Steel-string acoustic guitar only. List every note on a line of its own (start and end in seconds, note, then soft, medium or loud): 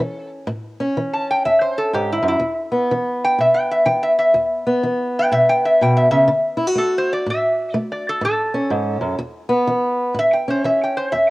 0.00 0.45 E3 medium
0.00 0.47 C#4 medium
0.47 0.93 A2 medium
0.80 2.41 C#4 medium
0.97 1.42 E3 medium
1.45 1.90 E2 medium
1.93 2.22 G#2 medium
2.23 2.39 F#2 medium
2.39 2.86 E2 medium
2.71 4.65 B3 medium
2.91 3.35 E3 medium
3.38 3.83 B2 medium
3.86 4.31 E3 medium
4.34 4.79 E2 medium
4.67 6.29 B3 medium
4.83 5.28 E3 medium
5.32 5.77 B2 medium
5.81 6.11 B2 medium
6.11 6.29 C#3 medium
6.28 6.73 D3 medium
6.57 6.67 E4 medium
6.67 8.21 F#4 medium
6.75 7.21 A3 medium
7.26 7.71 A2 medium
7.74 8.19 A3 medium
8.21 8.66 A2 medium
8.54 9.17 C#4 medium
8.70 9.00 G#2 medium
9.01 9.18 F#2 medium
9.19 9.63 E2 medium
9.49 10.15 B3 medium
9.67 10.12 E3 medium
10.14 10.60 A2 medium
10.48 11.30 C#4 medium
10.64 11.09 E3 medium
11.13 11.30 E2 medium